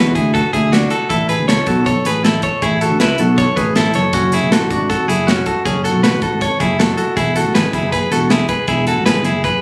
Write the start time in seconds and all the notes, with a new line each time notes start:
Already playing: E2 F#4 B4
0.15 D2 E4 G#4, kick, closed hi-hat
0.34 F#4 A4, kick, closed hi-hat
0.53 D2 E4 G#4, kick, closed hi-hat
0.72 D4 F#4, snare, closed hi-hat
0.90 F#4 A4, closed hi-hat
1.09 A1 E4 A4, kick, closed hi-hat
1.29 G#4 B4, closed hi-hat
1.39 D2
1.48 C#2 A4 C#5, snare, closed hi-hat
1.66 B1 F#4 A4, kick, closed hi-hat
1.86 A4 C#5, kick, closed hi-hat
2.05 A1 G#4 B4, closed hi-hat
2.24 E4 A4, snare, closed hi-hat
2.42 A4 C#5, kick, closed hi-hat
2.62 A1 E4 G#4, kick, closed hi-hat
2.81 F#4 A4, closed hi-hat
2.90 D2
3.00 C#2 E4 B4, snare, closed hi-hat
3.18 B1 F#4 A4, closed hi-hat
3.38 A4 C#5, kick, closed hi-hat
3.56 A1 G#4 B4, kick, closed hi-hat
3.76 E4 A4, snare, closed hi-hat
3.94 F#1 A4 C#5, closed hi-hat
4.13 C#4 F#4, kick, closed hi-hat
4.32 E4 G#4, closed hi-hat
4.41 F#1
4.51 A1 F#4 A4, snare, closed hi-hat
4.70 G#1 D4 F#4, kick, closed hi-hat
4.89 F#4 A4, kick, closed hi-hat
5.08 F#1 E4 G#4, closed hi-hat
5.27 C#4 F#4, snare, closed hi-hat
5.46 F#4 A4, kick, closed hi-hat
5.65 F#1 C#4 G#4, kick, closed hi-hat
5.84 F#4 A4, closed hi-hat
5.92 B1
6.03 A1 F#4 B4, snare, closed hi-hat
6.22 G#1 F#4 A4, kick, closed hi-hat
6.41 A4 C#5, kick, closed hi-hat
6.60 F#1 E4 G#4, kick, closed hi-hat
6.79 F#4 A4, snare, closed hi-hat
6.97 F#4 A4, closed hi-hat
7.16 E1 E4 G#4, kick, closed hi-hat
7.36 F#4 A4, closed hi-hat
7.45 A1
7.54 G#1 G#4 B4, snare, closed hi-hat
7.73 F#1 E4 G#4, kick, closed hi-hat
7.92 G#4 B4, kick, closed hi-hat
8.11 E1 F#4 A4, closed hi-hat
8.30 E4 G#4, snare, closed hi-hat
8.49 G#4 B4, kick, closed hi-hat
8.68 E1 E4 G#4, kick, closed hi-hat
8.87 F#4 A4, closed hi-hat
8.96 A1
9.05 G#1 G#4 B4, snare, closed hi-hat
9.24 F#1 E4 G#4, closed hi-hat
9.44 G#4 B4, kick, closed hi-hat